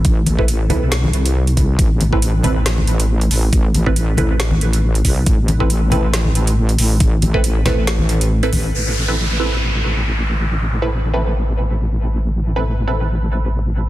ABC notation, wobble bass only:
X:1
M:4/4
L:1/8
Q:"Swing 16ths" 1/4=138
K:Am
V:1 name="Wobble bass" clef=bass
A,,,3 B,,,2 C,,3 | A,,,3 A,,,4 A,,,- | A,,,3 A,,,4 C,, | A,,,3 A,,,4 A,,,- |
A,,,3 A,,,4 A,,, | A,,,8- | A,,,8- | A,,,8 |]